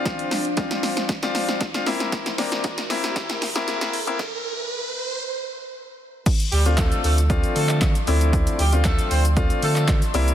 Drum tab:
CC |----------------|----------------|----------------|x---------------|
HH |xxoxxxoxxxoxxxox|xxoxxxoxxxoxxxox|----------------|xxoxxxoxxxo-xxox|
SH |----------------|----------------|----------------|xxxxxxxxxxxxxxxx|
CP |----------------|----------------|----------------|----x------xx---|
SD |o-o-oooooooooooo|oooooooooooooo--|o---------------|----o-------o---|
BD |o---o---o---o---|o---o---o-------|o---------------|o---o---o---o---|

CC |----------------|
HH |xxoxxxoxxxoxxxox|
SH |xxxxxxxxxxxxxxxx|
CP |----x------xx---|
SD |----o-------o---|
BD |o---o---o---o---|